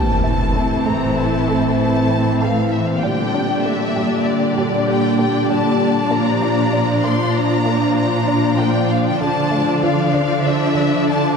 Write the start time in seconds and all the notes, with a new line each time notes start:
Already playing: A2 E3 A3 C4 E4 A4 C5 A5, impact
0.24 E4
0.55 C4
0.86 A3 A#5
1.17 A5
1.48 A3
1.79 A5
2.11 C4
2.40 A3 F5
2.72 E5
2.88 F5
3.03 A#2 D3 G3 A#3 D4 G4 D5 G5
3.34 D4
3.64 A#3 E5
3.96 G3
4.27 D5
4.58 G3
4.88 G5
5.19 A#3 G5
5.50 G3 A5
6.11 F3 A#3 F4 A#5
6.42 F4
6.73 D4
7.04 A#3 C6
7.35 A#5
7.66 A#3
7.97 A#5
8.28 D4
8.59 A#3 G5
8.91 F5
9.07 G5
9.21 D3 D4 A4 D5 A5
9.52 A3
9.83 F3 F5
10.14 D3
10.46 E5
10.75 D3
11.08 A5